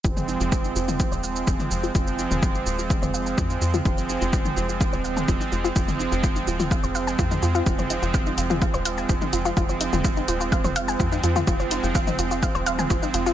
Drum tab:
HH |----------------|----------------|----------------|----------------|
SH |xxxxxxxxxxxxxxxx|xxxxxxxxxxxxxxxx|xxxxxxxxxxxxxxxx|xxxxxxxxxxxxxxxx|
T2 |-o-----o-----o--|---o-----o-----o|-----o-----o----|-o-----o-----o--|
BD |o---o---o---o---|o---o---o---o---|o---o---o---o---|o---o---o---o---|

HH |--x---x---x---x-|--x---x---x---x-|--x---x---x---x-|
SH |xxxxxxxxxxxxxxxx|xxxxxxxxxxxxxxxx|xxxxxxxxxxxxxxxx|
T2 |-o-----o-----o--|---o-----o-----o|-----o-----o----|
BD |o---o---o---o---|o---o---o---o---|o---o---o---o---|